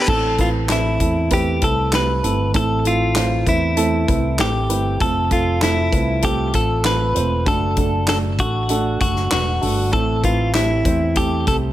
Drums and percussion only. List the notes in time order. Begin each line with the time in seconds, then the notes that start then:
0.08 kick, crash
0.38 kick, closed hi-hat
0.69 snare, clap, closed hi-hat
1.00 kick, closed hi-hat
1.30 kick, closed hi-hat
1.62 kick, closed hi-hat
1.93 snare, clap, closed hi-hat
2.24 closed hi-hat
2.54 kick, closed hi-hat
2.85 closed hi-hat
3.15 snare, clap, closed hi-hat
3.46 kick, closed hi-hat
3.77 closed hi-hat
4.08 kick, closed hi-hat
4.39 snare, clap, closed hi-hat
4.70 closed hi-hat
5.00 kick, closed hi-hat
5.31 kick, closed hi-hat
5.62 snare, clap, closed hi-hat
5.93 kick, closed hi-hat
6.22 kick, closed hi-hat
6.53 kick, closed hi-hat
6.84 snare, clap, closed hi-hat
7.16 closed hi-hat
7.46 kick, closed hi-hat
7.76 kick, closed hi-hat
8.07 snare, clap, closed hi-hat
8.39 kick, closed hi-hat
8.69 closed hi-hat
9.00 kick, closed hi-hat
9.16 snare
9.31 snare, clap, closed hi-hat
9.62 open hi-hat
9.93 kick, closed hi-hat
10.24 kick, closed hi-hat
10.54 snare, clap, closed hi-hat
10.85 kick, closed hi-hat
11.15 kick, closed hi-hat
11.47 kick, closed hi-hat